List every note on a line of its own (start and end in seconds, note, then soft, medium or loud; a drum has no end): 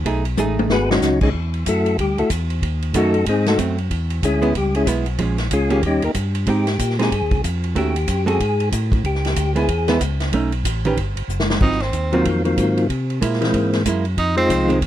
0.05 0.36 B1 loud
0.05 0.23 A3 medium
0.05 0.24 D#4 medium
0.05 0.24 G#4 medium
0.05 kick soft
0.05 ride medium
0.25 ride medium
0.37 0.68 A1 medium
0.37 0.86 A3 medium
0.37 0.86 D#4 medium
0.37 0.86 G#4 medium
0.37 hi-hat pedal medium
0.37 high tom medium
0.59 high tom medium
0.68 1.00 G#1 loud
0.68 0.89 B3 medium
0.68 0.89 F#4 medium
0.68 0.90 G#4 medium
0.68 0.90 B4 loud
0.68 snare medium
0.90 1.20 F#3 medium
0.90 1.20 C#4 medium
0.90 1.20 D#4 medium
0.90 1.19 F#4 medium
0.90 snare loud
1.01 1.33 C#2 medium
1.01 snare medium
1.01 hi-hat pedal medium
1.21 1.30 G#3 medium
1.21 1.30 C#4 medium
1.21 1.30 D#4 medium
1.21 1.29 G#4 loud
1.21 kick medium
1.21 crash medium
1.33 1.65 E2 medium
1.33 kick soft
1.54 ride soft
1.66 1.97 F#2 medium
1.66 1.97 A3 medium
1.66 1.97 E4 medium
1.66 1.97 F#4 medium
1.66 1.97 A4 medium
1.66 kick soft
1.66 hi-hat pedal medium
1.66 ride medium
1.86 ride soft
1.98 2.16 D2 medium
1.98 2.19 G3 medium
1.98 2.18 G4 medium
1.98 kick soft
1.98 ride medium
2.17 2.23 D2 soft
2.17 2.30 A3 medium
2.17 2.31 E4 medium
2.17 2.30 F#4 medium
2.17 2.30 A4 medium
2.17 ride soft
2.30 2.61 E2 medium
2.30 kick soft
2.30 hi-hat pedal medium
2.30 ride medium
2.50 ride soft
2.61 2.93 D#2 medium
2.61 kick soft
2.61 ride medium
2.82 ride soft
2.93 3.25 F#2 medium
2.93 3.12 D#3 medium
2.93 3.12 A3 medium
2.93 3.25 A3 medium
2.93 3.13 C#4 medium
2.93 3.26 D#4 medium
2.93 3.13 F#4 medium
2.93 3.26 F#4 medium
2.93 3.26 A4 medium
2.93 kick soft
2.93 hi-hat pedal medium
2.93 ride medium
3.14 ride soft
3.26 3.57 G#2 medium
3.26 3.47 G#3 medium
3.26 3.47 C4 medium
3.26 3.47 D#4 medium
3.26 3.46 G#4 medium
3.26 kick soft
3.26 ride medium
3.46 3.60 A3 medium
3.46 3.60 D#4 medium
3.46 3.59 F#4 medium
3.46 3.59 A4 loud
3.46 snare medium
3.46 ride soft
3.58 3.89 F#2 medium
3.58 3.76 F#3 medium
3.58 3.76 A3 medium
3.58 3.77 C4 medium
3.58 kick soft
3.58 hi-hat pedal medium
3.58 ride medium
3.78 ride soft
3.90 4.21 E2 medium
3.90 kick soft
3.90 ride medium
4.10 ride soft
4.22 4.54 D2 medium
4.22 4.54 G#3 medium
4.22 4.54 C#4 medium
4.22 4.54 E4 medium
4.22 4.53 G#4 medium
4.22 kick soft
4.22 hi-hat pedal medium
4.22 ride medium
4.42 4.53 G#3 medium
4.42 4.53 B3 medium
4.42 4.54 E4 medium
4.42 ride soft
4.55 4.86 C#2 medium
4.55 4.75 G3 medium
4.55 4.75 G4 medium
4.55 kick soft
4.55 ride medium
4.75 4.87 G#3 medium
4.75 4.87 C#4 medium
4.75 4.87 E4 medium
4.75 4.87 G#4 loud
4.75 ride medium
4.86 5.18 B1 medium
4.86 5.04 G#3 medium
4.86 5.05 B3 medium
4.86 5.05 E4 medium
4.86 kick soft
4.86 hi-hat pedal medium
4.86 ride medium
5.06 ride soft
5.18 5.50 A#1 medium
5.18 5.37 F3 medium
5.18 5.37 G#3 medium
5.18 5.37 C#4 medium
5.18 kick soft
5.18 ride medium
5.38 snare soft
5.38 ride soft
5.51 5.82 C#2 medium
5.51 5.82 G#3 medium
5.51 5.82 C#4 medium
5.51 5.82 F4 medium
5.51 5.82 G#4 medium
5.51 kick soft
5.51 hi-hat pedal medium
5.51 ride medium
5.70 5.82 D#3 medium
5.70 5.82 A#3 medium
5.70 5.82 C#4 medium
5.70 5.82 G4 medium
5.70 ride medium
5.82 6.01 D#2 medium
5.82 6.04 G3 medium
5.82 kick soft
5.82 ride medium
5.87 6.04 C#4 medium
5.87 6.04 D#4 medium
5.87 6.03 G4 loud
6.02 6.09 D#2 soft
6.02 6.11 A#3 medium
6.02 6.12 D#4 medium
6.02 6.11 G4 medium
6.02 6.11 A#4 loud
6.02 ride medium
6.14 6.46 G2 medium
6.14 kick soft
6.14 hi-hat pedal medium
6.14 ride medium
6.35 ride medium
6.46 6.78 G#2 medium
6.46 6.65 G#3 medium
6.46 6.65 C4 medium
6.46 6.65 D#4 medium
6.46 6.66 G4 medium
6.46 6.97 G4 medium
6.46 kick soft
6.46 ride medium
6.67 snare soft
6.67 ride medium
6.79 7.10 A#2 medium
6.79 kick soft
6.79 hi-hat pedal medium
6.79 ride medium
6.90 snare soft
6.99 7.10 G#3 medium
6.99 7.10 C4 medium
6.99 7.11 D#4 medium
6.99 7.11 G4 medium
6.99 7.42 G#4 loud
6.99 snare soft
6.99 ride medium
7.11 7.22 G2 medium
7.11 kick soft
7.11 ride medium
7.22 7.33 D#2 medium
7.31 7.42 C2 medium
7.31 kick medium
7.31 ride soft
7.43 7.75 F2 loud
7.43 kick soft
7.43 hi-hat pedal medium
7.43 ride medium
7.64 ride soft
7.75 8.07 D#2 medium
7.75 7.93 D#3 medium
7.75 7.94 A3 medium
7.75 7.94 C#4 medium
7.75 7.94 F#4 medium
7.75 8.25 G4 medium
7.75 kick soft
7.75 ride medium
7.96 ride medium
8.07 8.39 F#2 medium
8.07 kick soft
8.07 hi-hat pedal medium
8.07 ride medium
8.26 8.38 G#3 medium
8.26 8.38 C4 medium
8.26 8.38 F#4 medium
8.26 8.69 G#4 loud
8.26 8.39 A4 medium
8.26 ride medium
8.40 8.71 G#2 medium
8.40 kick soft
8.40 ride medium
8.60 ride medium
8.72 9.03 A2 loud
8.72 kick soft
8.72 hi-hat pedal medium
8.72 ride medium
8.92 kick medium
8.92 ride soft
9.04 9.35 C#2 loud
9.04 9.53 G4 medium
9.04 kick soft
9.04 ride medium
9.15 snare soft
9.25 snare medium
9.25 ride medium
9.36 9.67 D2 loud
9.36 kick soft
9.36 hi-hat pedal medium
9.36 ride medium
9.56 9.67 G#3 medium
9.56 9.67 B3 medium
9.56 9.68 E4 medium
9.56 9.98 G#4 loud
9.56 ride medium
9.68 9.99 E2 medium
9.68 kick soft
9.68 ride medium
9.88 9.99 G#3 medium
9.88 10.00 B3 medium
9.88 10.00 E4 medium
9.88 snare medium
9.88 ride medium
10.00 10.31 C#2 loud
10.00 kick soft
10.00 hi-hat pedal medium
10.00 ride medium
10.20 snare soft
10.20 ride soft
10.32 10.63 B1 medium
10.32 10.51 A3 medium
10.32 10.51 C#4 medium
10.32 10.51 D#4 medium
10.32 kick soft
10.32 ride medium
10.52 ride soft
10.64 10.95 A1 loud
10.64 kick soft
10.64 hi-hat pedal medium
10.64 ride medium
10.85 10.96 D#3 medium
10.85 10.96 C#4 medium
10.85 10.97 G4 medium
10.85 10.97 B4 medium
10.85 ride medium
10.97 11.15 G1 loud
10.97 kick soft
10.97 ride medium
11.16 11.22 G1 soft
11.16 ride medium
11.28 11.59 F#1 loud
11.28 hi-hat pedal medium
11.40 snare medium
11.50 snare medium
11.60 11.92 G#1 medium
11.60 11.79 F#3 soft
11.60 11.79 C4 medium
11.60 11.83 D#4 medium
11.60 11.80 F4 medium
11.60 kick medium
11.60 crash medium
11.71 snare soft
11.80 12.26 C4 medium
11.80 snare soft
11.80 ride soft
11.93 12.24 D#2 medium
11.93 kick soft
11.93 hi-hat pedal medium
11.93 ride medium
12.12 12.42 D#3 medium
12.12 12.42 F#3 medium
12.12 12.24 F#3 medium
12.12 12.43 A#3 medium
12.12 12.43 C4 medium
12.12 12.25 C4 medium
12.12 12.43 F4 medium
12.12 12.25 F4 medium
12.12 ride medium
12.24 12.56 F2 medium
12.24 kick soft
12.24 ride medium
12.44 12.86 D#3 medium
12.44 12.87 F#3 medium
12.44 12.87 A#3 medium
12.44 12.87 C4 medium
12.44 12.87 F4 medium
12.44 ride soft
12.57 12.88 G#2 medium
12.57 kick soft
12.57 hi-hat pedal medium
12.57 ride medium
12.77 ride soft
12.89 13.20 C3 medium
12.89 kick soft
12.89 ride medium
13.10 ride soft
13.21 13.52 A#2 medium
13.21 13.69 G#3 medium
13.21 13.70 A#3 medium
13.21 13.70 E4 medium
13.21 kick soft
13.21 hi-hat pedal soft
13.21 ride medium
13.33 snare soft
13.41 13.83 E3 medium
13.41 13.83 G#3 medium
13.41 13.83 A#3 medium
13.41 13.83 C4 medium
13.41 snare soft
13.41 ride medium
13.53 13.84 G#2 medium
13.53 kick soft
13.53 ride medium
13.73 snare soft
13.73 ride soft
13.85 14.16 F#2 medium
13.85 14.04 G#3 medium
13.85 14.04 A#3 medium
13.85 14.04 E4 medium
13.85 kick soft
13.85 hi-hat pedal medium
13.85 ride medium
14.05 ride soft
14.17 14.48 F2 medium
14.17 14.36 D#4 medium
14.17 kick soft
14.17 ride medium
14.36 14.79 F3 medium
14.36 14.79 G#3 medium
14.36 14.79 C4 medium
14.36 14.79 C4 loud
14.36 14.79 D#4 medium
14.36 14.79 F4 medium
14.36 ride soft
14.49 14.80 C2 medium
14.49 kick soft
14.49 hi-hat pedal medium
14.49 ride medium
14.68 14.80 D#3 medium
14.68 14.80 G#3 medium
14.68 14.80 C4 medium
14.68 ride medium
14.81 14.87 D#2 medium
14.81 kick soft
14.81 ride medium